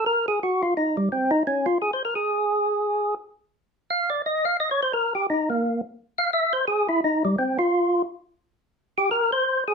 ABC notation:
X:1
M:4/4
L:1/8
Q:"Swing" 1/4=172
K:Fm
V:1 name="Tonewheel organ"
B A _G F E =G, C E | D F (3A c B A4- | A2 z4 f =d | e f (3e d c B G E B,- |
B, z2 f =e c A =E | E G, C F3 z2 | z3 G B c2 A |]